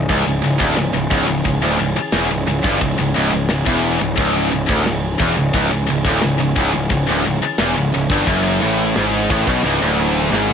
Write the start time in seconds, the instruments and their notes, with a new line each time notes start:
Already playing: pipe organ E3 C#4 G#4
0.09 picked electric bass C#1, distorted electric guitar C#2, kick, crash
0.26 picked electric bass C#1, distorted electric guitar C#2
0.43 picked electric bass C#1, distorted electric guitar C#2, crash
0.59 picked electric bass D1, distorted electric guitar D2, kick
0.77 picked electric bass C#1, distorted electric guitar C#2, snare, crash
0.94 picked electric bass C#1, distorted electric guitar C#2
1.10 picked electric bass C#1, distorted electric guitar C#2, kick, crash
1.28 picked electric bass C#1, distorted electric guitar C#2
1.44 picked electric bass C#1, distorted electric guitar C#2, kick, crash
1.61 picked electric bass D1, distorted electric guitar D2
1.79 picked electric bass C#1, distorted electric guitar C#2, crash
1.96 muted picked electric bass stroke, muted distorted electric guitar stroke
2.12 picked electric bass E1, distorted electric guitar E2, snare, crash
2.30 picked electric bass C#1, distorted electric guitar C#2
2.47 picked electric bass C#1, distorted electric guitar C#2, crash
2.63 picked electric bass G1, distorted electric guitar G2, kick
2.81 picked electric bass C#1, distorted electric guitar C#2, kick, crash
2.98 picked electric bass C#1, distorted electric guitar C#2
3.14 picked electric bass C#1, distorted electric guitar C#2, crash
3.33 picked electric bass C#1, distorted electric guitar C#2
3.48 picked electric bass C#1, distorted electric guitar C#2, snare, crash
3.66 picked electric bass E1, distorted electric guitar E2, kick
3.83 crash
3.99 picked electric bass C#1, distorted electric guitar C#2
4.16 picked electric bass C#1, distorted electric guitar C#2, kick, crash
4.51 picked electric bass C#1, distorted electric guitar C#2, crash
4.66 picked electric bass D1, distorted electric guitar D2, kick
4.70 distorted electric guitar D2
4.84 picked electric bass C#1, distorted electric guitar C#2, snare, crash
5.18 picked electric bass E1, distorted electric guitar E2, kick, crash
5.36 picked electric bass C#1, distorted electric guitar C#2
5.53 picked electric bass C#1, distorted electric guitar C#2, kick, crash
5.71 picked electric bass C#1, distorted electric guitar C#2
5.87 picked electric bass C#1, distorted electric guitar C#2, crash
6.04 picked electric bass D1, distorted electric guitar D2, kick
6.21 picked electric bass C#1, distorted electric guitar C#2, snare, crash
6.38 picked electric bass C#1, distorted electric guitar C#2
6.56 picked electric bass C#1, distorted electric guitar C#2, kick, crash
6.72 picked electric bass C#1, distorted electric guitar C#2
6.90 picked electric bass C#1, distorted electric guitar C#2, kick, crash
7.07 picked electric bass D1, distorted electric guitar D2
7.24 picked electric bass C#1, distorted electric guitar C#2, crash
7.42 muted distorted electric guitar stroke, muted picked electric bass stroke
7.58 picked electric bass E1, distorted electric guitar E2, snare, crash
7.76 picked electric bass C#1, distorted electric guitar C#2
7.92 picked electric bass C#1, distorted electric guitar C#2, crash
8.10 picked electric bass G1, distorted electric guitar G2, kick
8.27 picked electric bass F#1, distorted electric guitar F#2, kick, crash
8.61 picked electric bass A1, distorted electric guitar A2, crash
8.96 picked electric bass G#1, distorted electric guitar G#2, snare, crash
9.30 picked electric bass A1, distorted electric guitar A2, kick, crash
9.47 picked electric bass B1, distorted electric guitar B2, kick
9.64 picked electric bass C#1, distorted electric guitar C#2, crash
9.81 picked electric bass D1, distorted electric guitar D2
10.00 crash
10.31 picked electric bass G#1, distorted electric guitar G#2, snare
10.50 high tom